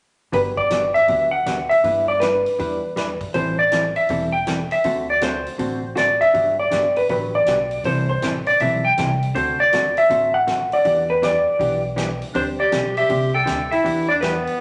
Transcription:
0.32 upright bass G1, hollow-body jazz guitar D3 F#3 B3 D4 G4, electric slide guitar B4, open hi-hat
0.57 electric slide guitar D5, kick
0.70 hollow-body jazz guitar D3 F#3 B3 D4 G4, snare, closed hi-hat
0.94 electric slide guitar E5, open hi-hat
1.08 upright bass D2, hollow-body jazz guitar D3 F#3 B3 D4 G4, open hi-hat
1.31 electric slide guitar F#5
1.46 hollow-body jazz guitar D3 F#3 B3 D4 G4, snare, closed hi-hat
1.69 electric slide guitar E5, open hi-hat
1.84 upright bass G1, hollow-body jazz guitar G3 D4 E4 B4, open hi-hat
2.08 electric slide guitar D5
2.20 hollow-body jazz guitar G3 D4 E4 B4, electric slide guitar B4, snare, closed hi-hat
2.46 open hi-hat
2.59 upright bass E2, hollow-body jazz guitar G3 D4 E4 B4, open hi-hat
2.96 hollow-body jazz guitar G3 D4 E4 B4, snare, closed hi-hat
3.21 kick, open hi-hat
3.34 upright bass A1, hollow-body jazz guitar E3 G3 C4 E4 A4, electric slide guitar C5, open hi-hat
3.59 electric slide guitar D5
3.72 hollow-body jazz guitar E3 G3 C4 E4 A4, snare, closed hi-hat
3.96 electric slide guitar E5, open hi-hat
4.09 upright bass E1, hollow-body jazz guitar E3 G3 C4 E4 A4, open hi-hat
4.32 electric slide guitar G5
4.47 hollow-body jazz guitar E3 G3 C4 E4 A4, snare, closed hi-hat
4.71 electric slide guitar E5, open hi-hat
4.84 upright bass D2, hollow-body jazz guitar D3 A3 C4 F#4 A4, open hi-hat
5.10 electric slide guitar D5
5.21 hollow-body jazz guitar D3 A3 C4 F#4 A4, electric slide guitar C5, snare, closed hi-hat
5.46 open hi-hat
5.58 upright bass A1, hollow-body jazz guitar D3 A3 C4 F#4 A4, open hi-hat
5.95 hollow-body jazz guitar D3 A3 C4 F#4 A4, electric slide guitar D5, snare, closed hi-hat
6.21 electric slide guitar E5, open hi-hat
6.34 upright bass G1, hollow-body jazz guitar D3 F#3 B3 D4 G4, open hi-hat
6.59 electric slide guitar D5
6.71 upright bass G1, hollow-body jazz guitar D3 F#3 B3 D4 G4, snare, closed hi-hat
6.96 electric slide guitar B4, open hi-hat
7.09 upright bass A1, hollow-body jazz guitar D3 F#3 B3 D4 G4, electric slide guitar B4, open hi-hat
7.35 electric slide guitar D5
7.46 upright bass B1, hollow-body jazz guitar D3 F#3 B3 D4 G4, snare, closed hi-hat
7.71 open hi-hat
7.84 upright bass C2, hollow-body jazz guitar C3 E3 G3 C4 E4 A4, electric slide guitar C5, open hi-hat
8.09 electric slide guitar C5
8.22 upright bass A1, hollow-body jazz guitar C3 E3 G3 C4 E4 A4, snare, closed hi-hat
8.46 electric slide guitar D5, open hi-hat
8.60 upright bass B1, hollow-body jazz guitar C3 E3 G3 C4 E4 A4, electric slide guitar E5, open hi-hat
8.85 electric slide guitar G5
8.98 upright bass C2, hollow-body jazz guitar C3 E3 G3 C4 E4 A4, snare, closed hi-hat
9.23 open hi-hat
9.35 upright bass D2, hollow-body jazz guitar D3 A3 C4 F#4 A4, electric slide guitar C5, open hi-hat
9.60 electric slide guitar D5
9.73 hollow-body jazz guitar D3 A3 C4 F#4 A4, snare, closed hi-hat
9.97 electric slide guitar E5, open hi-hat
10.10 upright bass A1, hollow-body jazz guitar D3 A3 C4 F#4 A4, open hi-hat
10.34 electric slide guitar F#5
10.47 hollow-body jazz guitar D3 A3 C4 F#4 A4, snare, closed hi-hat
10.72 electric slide guitar D5, open hi-hat
10.85 upright bass E2, hollow-body jazz guitar E3 B3 D4 G4, open hi-hat
11.10 electric slide guitar B4
11.22 hollow-body jazz guitar E3 B3 D4 G4, electric slide guitar D5, snare, closed hi-hat
11.59 upright bass B1, hollow-body jazz guitar E3 B3 D4 G4, open hi-hat
11.96 hollow-body jazz guitar E3 B3 D4 G4, snare, closed hi-hat
12.22 open hi-hat
12.34 upright bass D2, hollow-body jazz guitar D3 G3 C4 D4 G4, clarinet D4, electric slide guitar C5, open hi-hat
12.59 clarinet G4, electric slide guitar D5
12.72 upright bass B1, hollow-body jazz guitar D3 G3 C4 D4 G4, snare, closed hi-hat
12.97 clarinet G4, electric slide guitar E5, open hi-hat
13.09 upright bass C2, hollow-body jazz guitar D3 G3 C4 D4 G4, open hi-hat
13.34 clarinet A4, electric slide guitar G5
13.45 upright bass D2, hollow-body jazz guitar D3 G3 C4 D4 G4, snare, closed hi-hat
13.72 clarinet E4, electric slide guitar E5, open hi-hat
13.84 upright bass E2, hollow-body jazz guitar E3 B3 D4 G4, open hi-hat
14.09 clarinet D4, electric slide guitar D5
14.21 hollow-body jazz guitar E3 B3 D4 G4, clarinet B3, electric slide guitar B4, snare, closed hi-hat
14.47 open hi-hat

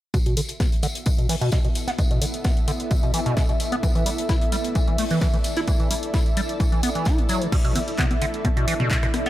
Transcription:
0.14 acid bass B2, ambient pad B3, analog synth pad E5, kick, closed hi-hat, tambourine
0.26 acid bass B2, closed hi-hat
0.37 acid bass D3, ambient pad A4, open hi-hat, tambourine
0.49 ambient pad E4, closed hi-hat
0.60 acid bass B3, kick, snare, closed hi-hat, tambourine
0.72 closed hi-hat
0.83 acid bass D3, open hi-hat, tambourine
0.95 closed hi-hat
1.06 acid bass B2, kick, closed hi-hat, tambourine
1.18 acid bass B2, closed hi-hat
1.29 acid bass E3, snare, open hi-hat
1.41 acid bass B2, ambient pad D5, closed hi-hat
1.52 acid bass B2, kick, snare, closed hi-hat, tambourine
1.65 acid bass B2, closed hi-hat
1.75 open hi-hat, tambourine
1.87 acid bass B3, snare, closed hi-hat
1.98 acid bass B2, kick, closed hi-hat, tambourine
2.11 acid bass B2, closed hi-hat
2.21 acid bass D3, open hi-hat, tambourine
2.34 closed hi-hat
2.44 acid bass B3, kick, snare, closed hi-hat, tambourine
2.57 closed hi-hat
2.68 acid bass D3, open hi-hat, tambourine
2.80 closed hi-hat
2.91 acid bass B2, kick, closed hi-hat, tambourine
3.03 acid bass B2, closed hi-hat
3.14 acid bass E3, open hi-hat, tambourine
3.26 acid bass B2, closed hi-hat
3.37 acid bass B2, kick, snare, closed hi-hat, tambourine
3.49 acid bass B2, closed hi-hat
3.60 open hi-hat, tambourine
3.72 acid bass B3, closed hi-hat
3.83 acid bass E3, kick, closed hi-hat, tambourine
3.95 acid bass E3, closed hi-hat
4.06 acid bass G3, open hi-hat, tambourine
4.18 closed hi-hat
4.29 acid bass E4, kick, snare, closed hi-hat, tambourine
4.41 closed hi-hat
4.52 acid bass G3, open hi-hat, tambourine
4.64 closed hi-hat
4.75 acid bass E3, kick, closed hi-hat, tambourine
4.88 acid bass E3, closed hi-hat
4.98 acid bass A3, snare, open hi-hat
5.11 acid bass E3, closed hi-hat
5.21 acid bass E3, kick, snare, closed hi-hat, tambourine
5.34 acid bass E3, closed hi-hat
5.44 open hi-hat, tambourine
5.56 acid bass E4, snare, closed hi-hat
5.68 acid bass E3, kick, closed hi-hat, tambourine
5.80 acid bass E3, closed hi-hat
5.91 acid bass G3, open hi-hat, tambourine
6.03 closed hi-hat
6.14 acid bass E4, kick, snare, closed hi-hat, tambourine
6.26 closed hi-hat
6.37 acid bass G3, open hi-hat, tambourine
6.49 closed hi-hat
6.60 acid bass E3, kick, closed hi-hat, tambourine
6.72 acid bass E3, closed hi-hat
6.83 acid bass B3, open hi-hat, tambourine
6.95 acid bass E3, closed hi-hat
7.05 acid bass E4, kick, snare, closed hi-hat, tambourine
7.18 acid bass A3, closed hi-hat
7.29 acid bass F#3, open hi-hat, tambourine
7.42 acid bass E3, closed hi-hat
7.52 acid bass B2, ambient pad B3, analog synth pad E5, kick, closed hi-hat, crash
7.64 acid bass B2, closed hi-hat
7.75 acid bass D3, open hi-hat, high conga
7.88 closed hi-hat
7.98 acid bass B3, kick, clap, closed hi-hat, mid tom
8.11 closed hi-hat, high conga
8.22 acid bass D3, open hi-hat
8.34 closed hi-hat
8.45 acid bass B2, kick, closed hi-hat, high conga
8.57 acid bass B2, closed hi-hat
8.68 acid bass E3, open hi-hat
8.80 acid bass B2, closed hi-hat, mid tom, high conga
8.91 acid bass B2, kick, clap, closed hi-hat
9.03 acid bass B2, cross-stick, closed hi-hat
9.14 cross-stick, open hi-hat, high conga
9.26 acid bass B3, closed hi-hat

